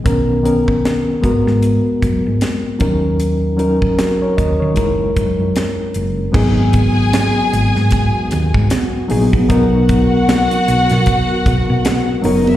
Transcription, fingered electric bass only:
X:1
M:4/4
L:1/16
Q:"Swing 16ths" 1/4=76
K:G#m
V:1 name="Fingered electric bass" clef=bass
B,,,4- B,,, z G,,, G,,2 z F,, G,, z2 D,,2- | D,,4- D,, z D,, D, F,,,2 F,, F,, z2 F,,,2 | G,,,4- G,,, z G,,, G,,2 z D,, G,, z2 A,,,2 | B,,,4- B,,, z B,,, B,,2 z B,,, B,, z2 F,,,2 |]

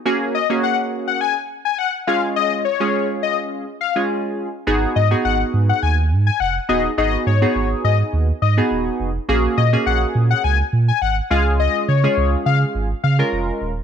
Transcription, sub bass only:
X:1
M:4/4
L:1/8
Q:1/4=104
K:G#dor
V:1 name="Sub bass" clef=bass
z8 | z8 | G,,, G,, G,,, G,, D,, G,, E,,, D,,, | G,,, G,, G,,, G,, D,, G,, D,,, E,,, |
A,,, A,, A,,, A,, C,, A,, G,,, C,,- | C,, C, C,, C, G,,, C, E,,, D,,, |]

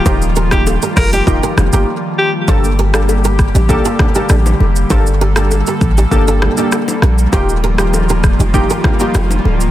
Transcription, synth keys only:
X:1
M:4/4
L:1/16
Q:1/4=99
K:Gm
V:1 name="Synth keys"
[B,EFG] z2 [B,EFG] z4 [B,EFG]3 [B,EFG] z4 | [B,DGA] z2 [B,DGA] z4 [B,DGA]3 [B,DGA] z4 | [B,DGA] z2 [B,DGA] z4 [B,DGA]3 [B,DGA] z4 | [B,EFG] z2 [B,EFG] z4 [B,EFG]3 [B,EFG] z4 |]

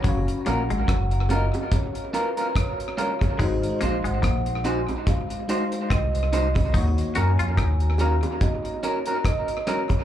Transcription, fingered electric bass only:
X:1
M:4/4
L:1/16
Q:"Swing 16ths" 1/4=72
K:F#
V:1 name="Fingered electric bass" clef=bass
F,,, z A,,, G,,, F,,,3 z8 z | G,,, z A,,, G,,, A,,,3 z4 z ^B,,,4 | D,, z F,, E,, D,,3 z8 z |]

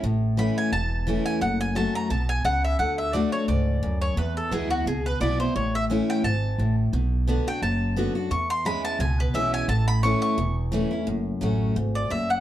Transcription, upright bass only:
X:1
M:4/4
L:1/8
Q:"Swing" 1/4=174
K:A
V:1 name="Upright bass" clef=bass
A,,,4 E,,,4 | F,,,4 B,,,2 C,,2 | D,,4 C,,2 D,,2 | E,,2 D,,2 C,,2 B,,,2 |
A,,,4 G,,,2 A,,,2 | B,,,4 F,,,4 | E,,4 C,,2 B,,,2 | A,,,4 E,,,4 |
F,,,2 A,,,2 G,,,2 F,,,2 |]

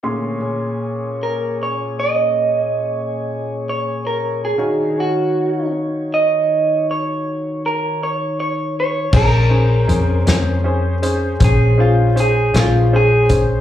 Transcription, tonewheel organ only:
X:1
M:12/8
L:1/8
Q:3/8=53
K:Bbm
V:1 name="Tonewheel organ"
[=D,=A,_d] [B,,D_Ad]8- [B,,DAd]3 | [E,=DGB] [E,_d]8- [E,d]3 | [=D_d=a] [_D_Ac]8- [DAc]3 |]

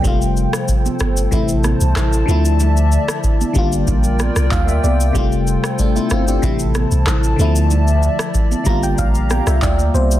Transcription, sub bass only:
X:1
M:4/4
L:1/16
Q:1/4=94
K:Gdor
V:1 name="Sub bass" clef=bass
F,,,3 z3 G,,,2 A,,,3 C,, A,,,2 D,,2- | D,,3 z3 G,,,2 B,,,3 C,, D,,2 C,,2 | F,,,3 z3 G,,,2 A,,,3 C,, A,,,2 D,,2- | D,,3 z3 G,,,2 B,,,3 C,, D,,2 C,,2 |]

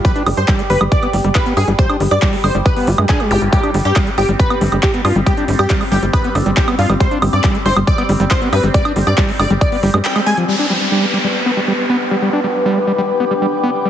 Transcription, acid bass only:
X:1
M:4/4
L:1/16
Q:1/4=138
K:G
V:1 name="Acid bass" clef=bass
G, D G, z G, _A, G, G, z B, G, G, z B, z G, | G, D G, z G, _A, G, G, z B, G A, D A,2 G, | G, D G, z G, _A, G, G, z B, G, G, z B, z G, | G, D G, z G, _A, G, G, z B, G, G, z B, z G, |
G, D G, z G, _A, G, G, z B, G, G, z B, z G, | G, D G, z G, _A, G, G, z B, G, A, z A, A, =F, | G, D G, z G, _A, G, G, z B, G, G, z B, z G, | G, D G, z G, _A, G, G, z B, G, G, z B, z G, |]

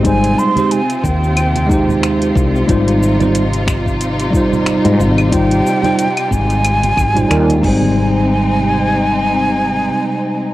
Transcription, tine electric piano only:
X:1
M:4/4
L:1/16
Q:"Swing 16ths" 1/4=91
K:Ab
V:1 name="Tine electric piano"
[G,A,Ec]3 [A,EGc] z6 [A,EGc]6 | [G,EFc]3 [G,EFc] z6 [G,EFc]6 | [G,EFc]3 [G,EFc] z6 z [G,EFc] [G,EFB] z [G,A,Ec]2- | [G,A,Ec]16 |]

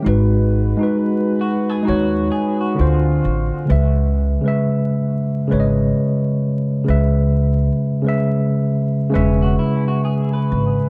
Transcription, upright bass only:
X:1
M:4/4
L:1/16
Q:"Swing 16ths" 1/4=66
K:C#m
V:1 name="Upright bass" clef=bass
G,,,3 z4 z D,,2 z2 =D,,2 A,,, z | C,,3 z4 z G,,,2 z4 C,,2- | C,,2 z6 E,,,2 z4 G,,, z |]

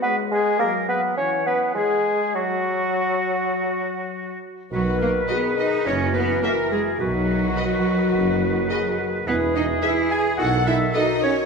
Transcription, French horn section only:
X:1
M:4/4
L:1/8
Q:1/4=105
K:B
V:1 name="French horn section"
G,2 F,2 E,2 G,2 | F,6- F, z | B2 G2 F4 | D E F4 G F |
E4 D2 F2 |]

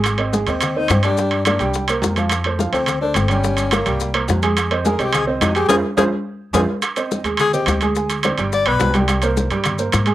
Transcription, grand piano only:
X:1
M:4/4
L:1/8
Q:1/4=212
K:Fm
V:1 name="Grand piano"
[A,Aa] [Cce] [A,Aa] [Cce]2 [Cce]2 [G,Gg] | [G,Gg]2 [B,B=d] [G,Gg]2 [B,Bc]2 [F,Ff]- | [F,Ff] [=A,=Ac] [F,Ff] [A,Ac]2 [A,Ac]2 [G,Gg] | [G,Gg]2 [B,Bd] [G,Gg]2 [B,Bc]2 [A,Aa]- |
[A,Aa] [Cce] [A,Aa] [Cce]2 [Cce]2 [A,Aa] | [FAc] z [FAc] z3 [FAc] z | [K:Ab] z [Cce]2 [A,Aa]2 [Cce]2 [A,Aa] | [A,Aa]2 [Cc=d] [G,Gg]2 [=B,=Bd]2 [G,Gg]- |
[G,Gg] [B,Bc]2 [G,Gg]2 [B,Bc]2 [A,Aa] |]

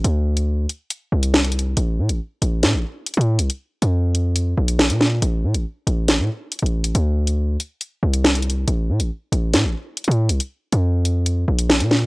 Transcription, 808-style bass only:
X:1
M:4/4
L:1/16
Q:1/4=139
K:Cmix
V:1 name="808-style bass" clef=bass
D,,6 z4 C,,6 | A,,,2 A,, A,,, z2 A,,,2 A,, A,,, z3 A,,2 C,, | z3 F,,6- F,, B,,,3 B,,3 | A,,,2 A,, A,,, z2 A,,,3 A,, z3 A,,,3 |
D,,6 z4 C,,6 | A,,,2 A,, A,,, z2 A,,,2 A,, A,,, z3 A,,2 C,, | z3 F,,6- F,, B,,,3 B,,3 |]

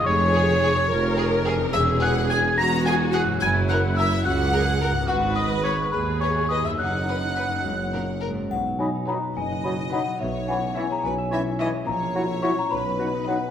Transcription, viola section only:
X:1
M:6/8
L:1/16
Q:3/8=71
K:Db
V:1 name="Viola section"
A6 B6 | [K:B] G6 F6 | E6 F2 G2 A2 | B6 G6 |
D8- D z3 | z4 [DF]2 z4 [DF]2 | z4 [CE]2 z4 [CE]2 | z4 [CF]2 z4 [B,F]2 |]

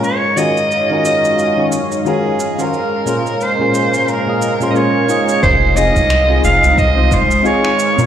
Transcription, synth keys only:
X:1
M:4/4
L:1/16
Q:"Swing 16ths" 1/4=89
K:Fphr
V:1 name="Synth keys"
z2 [E,DFGAB] z2 [E,DFGAB]4 [E,DFGAd] z2 [E,DFGAB] z2 [E,DFGAc] | z2 [B,,DFAc] z2 [B,,DFAc]4 [B,,DFAe] z [B,,DFAc] [B,,DFAc]2 [EFAe]2- | [EFAe]2 [CEFA] z2 [CEFA]4 [CEFc] z2 [CEFA] z2 [CDFB] |]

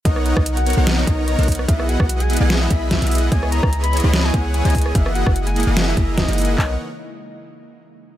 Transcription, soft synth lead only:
X:1
M:4/4
L:1/16
Q:"Swing 16ths" 1/4=147
K:B
V:1 name="Soft synth lead"
d2 d2 z f2 f2 d2 z d3 z | e2 f3 g2 g2 e2 z e3 z | g2 a2 z b2 b2 g2 z g4 | e2 f2 z g2 g2 e2 z d3 z |
d2 z12 z2 |]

